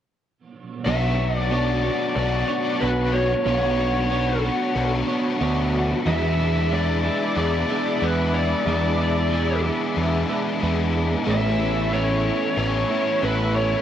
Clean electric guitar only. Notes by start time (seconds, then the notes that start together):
0.87 B2 F#3 B3 D4 F#4 C#5
1.18 B3 D4 F#4 C#5
1.51 B3 D4 F#4 C#5
1.83 B3 D4 F#4 C#5
2.48 B3 D4 F#4 C#5
2.81 B3 D4 F#4 C#5
3.45 B2 F#3 B3 D4 F#4 C#5
3.78 B3 D4 F#4 C#5
4.11 B3 D4 F#4 C#5
4.44 B3 D4 F#4 C#5
5.08 B3 D4 F#4 C#5
5.41 B3 D4 F#4 C#5
6.07 E2 E3 G#3 B3 D4 E4
6.40 G#3 B3 D4 E4
6.71 G#3 B3 D4 E4
7.05 G#3 B3 D4 E4
7.69 G#3 B3 D4 E4
8.02 G#3 B3 D4 E4
8.66 E2 E3 G#3 B3 D4 E4
8.99 G#3 B3 D4 E4
9.31 G#3 B3 D4 E4
9.63 G#3 B3 D4 E4
10.29 G#3 B3 D4 E4
10.62 G#3 B3 D4 E4
11.26 A2 A3 B3 C#4 E4
11.59 B3 C#4 E4
11.93 A3 B3 C#4 E4
12.25 B3 C#4 E4
12.91 B3 C#4 E4
13.23 A3 B3 C#4 E4